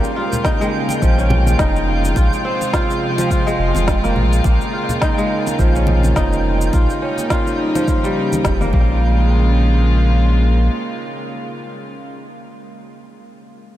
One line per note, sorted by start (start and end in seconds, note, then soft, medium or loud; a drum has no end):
0.00 2.14 C#3 medium
0.00 6.69 G#3 medium
0.00 1.80 A#3 medium
0.00 2.12 A#3 medium
0.00 0.16 F4 medium
0.00 6.69 F4 medium
0.00 9.03 G5 medium
0.04 cabasa soft
0.16 1.68 F4 medium
0.33 low conga medium
0.33 cabasa medium
0.45 1.59 D#4 medium
0.45 kick loud
0.45 snare medium
0.45 cabasa medium
0.61 2.21 G#3 medium
0.61 cabasa soft
0.89 muted conga soft
0.89 cabasa medium
1.02 1.56 A#1 loud
1.02 2.21 F3 medium
1.02 kick loud
1.02 cabasa medium
1.18 2.51 C#4 medium
1.18 cabasa soft
1.30 muted conga medium
1.30 high conga soft
1.30 low conga medium
1.47 high conga medium
1.47 cabasa medium
1.59 2.13 F1 medium
1.59 3.21 D#4 loud
1.59 kick loud
1.59 snare medium
1.59 cabasa medium
1.76 cabasa soft
2.05 cabasa medium
2.16 2.30 A#1 medium
2.16 4.42 C3 medium
2.16 4.42 F3 medium
2.16 2.73 F4 medium
2.16 kick medium
2.16 muted conga medium
2.16 cabasa soft
2.33 cabasa soft
2.45 4.25 C4 medium
2.61 muted conga soft
2.61 cabasa medium
2.73 3.30 F4 loud
2.73 kick loud
2.73 snare medium
2.73 cabasa soft
2.90 cabasa soft
3.18 4.50 F3 medium
3.18 muted conga soft
3.18 cabasa medium
3.31 4.73 F4 medium
3.31 kick medium
3.31 cabasa medium
3.47 4.50 G#3 medium
3.47 cabasa soft
3.59 3.73 F1 medium
3.75 4.18 F1 medium
3.75 high conga medium
3.75 cabasa medium
3.88 kick medium
3.88 snare medium
3.88 cabasa soft
4.04 4.44 A#3 medium
4.04 snare soft
4.04 high conga medium
4.04 cabasa soft
4.16 4.41 A#1 medium
4.16 low conga medium
4.33 cabasa medium
4.44 4.58 A#1 medium
4.44 6.71 C#3 medium
4.44 6.38 A#3 medium
4.44 6.71 A#3 medium
4.44 kick medium
4.44 muted conga medium
4.44 cabasa soft
4.61 cabasa soft
4.73 6.25 F4 medium
4.89 low conga medium
4.89 cabasa medium
5.02 6.16 D#4 loud
5.02 kick medium
5.02 snare medium
5.02 cabasa soft
5.18 6.78 G#3 medium
5.18 cabasa soft
5.47 muted conga soft
5.47 cabasa medium
5.59 6.13 A#1 loud
5.59 6.78 F3 medium
5.59 kick medium
5.59 cabasa soft
5.75 7.02 C#4 medium
5.75 cabasa soft
5.87 muted conga medium
5.87 high conga soft
5.87 low conga medium
6.03 high conga medium
6.03 cabasa medium
6.16 6.70 F1 medium
6.16 7.79 D#4 loud
6.16 kick medium
6.16 snare medium
6.16 cabasa medium
6.33 cabasa soft
6.61 cabasa medium
6.73 6.87 A#1 medium
6.73 8.71 C#3 medium
6.73 8.71 G3 medium
6.73 8.71 A#3 medium
6.73 8.71 D#4 medium
6.73 7.30 F4 medium
6.73 kick medium
6.73 muted conga medium
6.73 cabasa medium
6.90 cabasa soft
7.02 8.76 C#4 medium
7.18 muted conga soft
7.18 cabasa medium
7.30 7.88 F4 medium
7.30 kick medium
7.30 snare medium
7.30 cabasa soft
7.47 cabasa soft
7.75 8.78 F3 medium
7.75 muted conga soft
7.75 cabasa medium
7.88 9.39 F4 medium
7.88 kick medium
7.88 cabasa soft
8.04 8.78 G3 medium
8.04 cabasa soft
8.33 high conga medium
8.33 cabasa medium
8.45 8.73 F1 medium
8.45 kick medium
8.45 snare medium
8.45 cabasa medium
8.61 8.73 A#3 medium
8.61 snare soft
8.61 high conga medium
8.61 cabasa soft
8.73 10.69 A#1 medium
8.73 12.07 C#3 medium
8.73 12.07 G#3 medium
8.73 12.07 A#3 medium
8.73 10.66 A#3 medium
8.73 12.06 F4 medium
8.73 kick loud
8.73 low conga medium